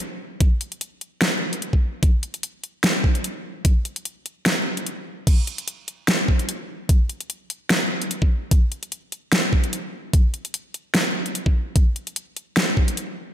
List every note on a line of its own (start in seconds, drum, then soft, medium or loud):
0.41 kick loud
0.41 closed hi-hat medium
0.61 closed hi-hat medium
0.72 closed hi-hat medium
0.81 closed hi-hat medium
1.01 closed hi-hat medium
1.22 snare loud
1.22 closed hi-hat medium
1.53 closed hi-hat medium
1.62 closed hi-hat medium
1.73 kick medium
2.03 kick loud
2.03 closed hi-hat medium
2.23 closed hi-hat medium
2.34 closed hi-hat medium
2.43 closed hi-hat medium
2.64 closed hi-hat medium
2.84 snare loud
2.84 closed hi-hat medium
3.04 kick medium
3.15 closed hi-hat medium
3.24 closed hi-hat medium
3.65 kick loud
3.65 closed hi-hat medium
3.85 closed hi-hat medium
3.96 closed hi-hat medium
4.05 closed hi-hat medium
4.26 closed hi-hat medium
4.46 snare loud
4.46 closed hi-hat medium
4.77 closed hi-hat medium
4.87 closed hi-hat medium
5.27 kick loud
5.27 closed hi-hat medium
5.27 crash medium
5.47 closed hi-hat medium
5.58 closed hi-hat medium
5.68 closed hi-hat medium
5.88 closed hi-hat medium
6.08 snare loud
6.08 closed hi-hat medium
6.28 kick medium
6.39 closed hi-hat medium
6.49 closed hi-hat medium
6.89 kick loud
6.89 closed hi-hat medium
7.09 closed hi-hat medium
7.20 closed hi-hat medium
7.30 closed hi-hat medium
7.50 closed hi-hat medium
7.70 snare loud
7.70 closed hi-hat medium
8.02 closed hi-hat medium
8.11 closed hi-hat medium
8.22 kick medium
8.51 kick loud
8.51 closed hi-hat medium
8.72 closed hi-hat medium
8.83 closed hi-hat medium
8.92 closed hi-hat medium
9.12 closed hi-hat medium
9.32 snare loud
9.32 closed hi-hat medium
9.53 kick medium
9.64 closed hi-hat medium
9.73 closed hi-hat medium
10.13 kick loud
10.13 closed hi-hat medium
10.34 closed hi-hat medium
10.45 closed hi-hat medium
10.54 closed hi-hat medium
10.74 closed hi-hat medium
10.95 snare loud
10.95 closed hi-hat medium
11.26 closed hi-hat medium
11.35 closed hi-hat medium
11.46 kick medium
11.76 kick loud
11.76 closed hi-hat medium
11.96 closed hi-hat medium
12.07 closed hi-hat medium
12.16 closed hi-hat medium
12.36 closed hi-hat medium
12.57 snare loud
12.57 closed hi-hat medium
12.77 kick medium
12.88 closed hi-hat medium
12.97 closed hi-hat medium